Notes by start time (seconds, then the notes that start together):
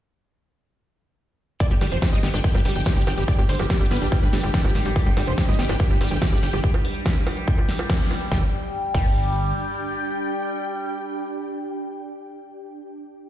1.60 G3 D4 G4 D5, kick, closed hi-hat, shekere
1.70 G1 G3 G4, shekere
1.76 G4 G5
1.81 G1 G3 G4, open hi-hat, high bongo, shekere
1.92 F1 F3 C5, closed hi-hat, shekere
2.02 G4, kick, snare, closed hi-hat, high bongo, shekere
2.13 G1 G3 D#5, shekere
2.23 G1 B3 G4, snare, open hi-hat, shekere
2.33 G1 D4 G5, closed hi-hat, high bongo, shekere
2.44 G4, kick, closed hi-hat, shekere
2.54 G1 G3 G4, high bongo, shekere
2.65 G1 G3 G4, open hi-hat, shekere
2.75 G1 F3 G5, closed hi-hat, shekere
2.86 G4, kick, snare, closed hi-hat, high bongo, shekere
2.96 G1 G3 G4, shekere
3.07 G1 G4 G5, open hi-hat, high bongo, shekere
3.17 G1 G3 G4, closed hi-hat, shekere
3.28 D5, kick, closed hi-hat, shekere
3.38 G1 G3 G4, high bongo, shekere
3.49 G1 G3 C5, open hi-hat, shekere
3.59 G1 F3 G4, closed hi-hat, high bongo, shekere
3.70 G4, kick, snare, closed hi-hat, shekere
3.80 G1 G3 G4, shekere
3.91 G1 B3 B4, open hi-hat, high bongo, shekere
4.01 G1 D4 G4, closed hi-hat, shekere
4.12 G4, kick, closed hi-hat, high bongo, shekere
4.22 G1 G3 B4
4.33 G1 G3 G4, snare, open hi-hat, shekere
4.43 G1 F3 G4, closed hi-hat, high bongo, shekere
4.54 G4, kick, snare, closed hi-hat, shekere
4.64 G#1 G3 G4, high bongo, shekere
4.75 G#1 G4, open hi-hat, shekere
4.85 G#1 G3 G4, closed hi-hat, shekere
4.96 D5, kick, closed hi-hat, high bongo, shekere
5.06 G1 G3 G4, shekere
5.17 G1 G3 G4, open hi-hat, high bongo, shekere
5.27 F1 F3 C5, closed hi-hat, shekere
5.38 G4, kick, snare, closed hi-hat, shekere
5.47 G1 G3 D#5, high bongo, shekere
5.59 G1 B3 G4, snare, open hi-hat, shekere
5.69 G1 D4 G5, closed hi-hat, high bongo, shekere
5.80 G4, kick, closed hi-hat, shekere
5.90 G1 G3 G4, shekere
6.01 G1 G3 G4, open hi-hat, high bongo, shekere
6.11 G1 F3 G5, closed hi-hat, shekere
6.22 G4, kick, snare, closed hi-hat, high bongo, shekere
6.32 G1 G3 G4, shekere
6.43 G1 G4 G5, open hi-hat, shekere
6.53 G1 G3 G4, closed hi-hat, high bongo, shekere
6.64 kick, closed hi-hat
6.74 high bongo
6.85 open hi-hat
6.95 closed hi-hat
7.06 kick, snare, closed hi-hat, high bongo
7.27 open hi-hat, high bongo
7.37 closed hi-hat
7.48 kick, closed hi-hat
7.58 high bongo
7.69 snare, open hi-hat
7.79 high bongo
7.90 kick, snare, closed hi-hat
8.11 open hi-hat, high bongo
8.21 closed hi-hat
8.32 G1 G3 D4 G4 G5, kick, snare
8.38 G4
8.44 G5
8.95 G1 G3 G5, kick, crash